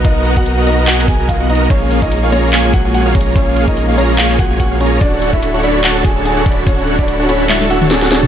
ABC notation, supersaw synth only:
X:1
M:4/4
L:1/16
Q:"Swing 16ths" 1/4=145
K:A#phr
V:1 name="Supersaw synth"
[B,FAdf]3 [B,FAda]2 [B,FAdf] [B,FAda]2 [B,FAdg] [B,FAdg]2 [B,FAdg]2 [B,FAdf] [B,FAda]2 | [A,EGce]3 [A,EGca]2 [A,EGce] [A,EGca]2 [A,EGcg] [A,EGcg]2 [A,EGcg]2 [A,EGce] [A,EGca]2 | [A,EGce]3 [A,EGca]2 [A,EGce] [A,EGca]2 [A,EGcg] [A,EGcg]2 [A,EGcg]2 [A,EGce] [A,EGca]2 | [=DF=Acf]3 [DFAcb]2 [DFAcf] [DFAcb]2 [DFAc=a] [DFAca]2 [DFAca]2 [DFAcf] [Fb]2 |
[=DF=Acf]3 [DFAcb]2 [DFAcf] [DFAcb]2 [DFAc=a] [DFAca] [DFAc=e] [DFAca] [DFAca] [DFAcf] [DFAca]2 |]